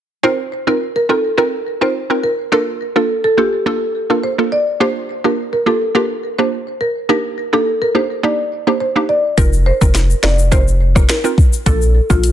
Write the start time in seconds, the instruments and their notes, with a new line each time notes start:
0.23 synth pluck C4 D#4 F4 A#4, marimba C5
0.67 synth pluck C4 D#4 F4 A#4, marimba A#4
0.96 marimba A#4
1.09 synth pluck C4 D#4 F4 A#4, marimba A4
1.38 synth pluck C4 D#4 F4 A#4, marimba A#4
1.81 synth pluck C4 D#4 F4 A#4, marimba C5
2.10 synth pluck C4 D#4 F4 A#4
2.24 marimba A#4
2.52 synth pluck A#3 D4 F4 A4, marimba A#4
2.96 synth pluck A#3 D4 F4 A4, marimba A4
3.24 marimba A4
3.37 synth pluck A#3 D4 F4 A4, marimba G4
3.66 synth pluck A#3 D4 F4 A4, marimba A4
4.10 synth pluck A#3 D4 F4 A4, marimba A#4
4.23 marimba C5
4.38 synth pluck A#3 D4 F4 A4
4.52 marimba D5
4.80 synth pluck A#3 D4 F4 G4, marimba C5
5.24 synth pluck A#3 D4 F4 G4, marimba A#4
5.53 marimba A#4
5.66 synth pluck A#3 D4 F4 G4, marimba A4
5.95 synth pluck A#3 D4 F4 G4, marimba A#4
6.38 synth pluck A#3 D4 F4 G4, marimba C5
6.81 marimba A#4
7.09 synth pluck A#3 D4 D#4 G4, marimba A#4
7.53 synth pluck A#3 D4 D#4 G4, marimba A4
7.82 marimba A#4
7.95 synth pluck A#3 D4 D#4 G4, marimba C5
8.23 synth pluck A#3 D4 D#4 G4, marimba D5
8.67 synth pluck A#3 D4 D#4 G4, marimba C5
8.81 marimba C5
8.96 synth pluck A#3 D4 D#4 G4
9.09 marimba D5
9.38 analog synth bass F1, synth pluck C4 D#4 F4 A#4, marimba A#4, kick, closed hi-hat, shaker
9.53 shaker
9.66 marimba C5
9.81 analog synth bass F1, synth pluck C4 D#4 F4 A#4, marimba A#4, kick, shaker
9.95 snare, closed hi-hat, shaker
10.10 shaker
10.23 analog synth bass F1, synth pluck C4 D#4 F4 A#4, marimba D5, finger snap, snare
10.39 shaker
10.52 synth pluck C4 D#4 F4 A#4, marimba C5, kick, closed hi-hat, shaker
10.68 shaker
10.95 synth pluck C4 D#4 F4 A#4, kick, cross-stick, shaker
11.09 marimba A#4, finger snap, snare, closed hi-hat, shaker
11.24 synth pluck C4 D#4 F4 A#4, shaker
11.38 kick, shaker
11.53 shaker
11.66 analog synth bass A#1, synth pluck A#3 D4 F4 A4, marimba A4, kick, closed hi-hat, shaker
11.82 shaker
12.10 analog synth bass A#1, synth pluck A#3 D4 F4 A4, marimba F4, kick, shaker
12.24 closed hi-hat, shaker